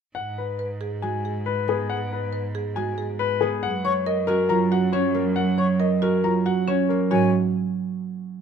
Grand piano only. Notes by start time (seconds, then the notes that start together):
0.15 F#5
0.38 B4
1.02 G#5
1.46 B4
1.69 G#4
1.90 F#5
2.13 B4
2.76 G#5
3.19 B4
3.41 G#4
3.63 F#5
3.85 C#5
4.06 D#5
4.27 A#4
4.49 A#5
4.72 F#5
4.93 C#5
5.15 A#4
5.36 F#5
5.58 C#5
5.80 D#5
6.03 A#4
6.24 A#5
6.46 F#5
6.68 C#5
6.89 A#4
7.11 C#5